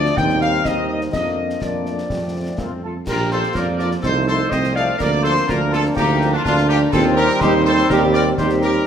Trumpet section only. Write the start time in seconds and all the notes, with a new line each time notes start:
Already playing: D5
0.16 G5
0.40 F5
0.66 D#5
0.91 D#5
1.13 D#5
1.62 D5
2.59 F4
2.83 A4
3.09 A#4
3.32 C5
3.56 D5
3.79 D5
4.04 C5
4.28 C5
4.50 D#5
4.75 F5
4.99 D5
5.23 C5
5.48 A#4
5.72 A4
5.96 G4
6.34 F4
6.45 F4
6.68 G4
6.92 A4
7.16 A#4
7.40 C5
7.65 C5
7.88 A#4
8.12 D5
8.38 C5
8.62 A#4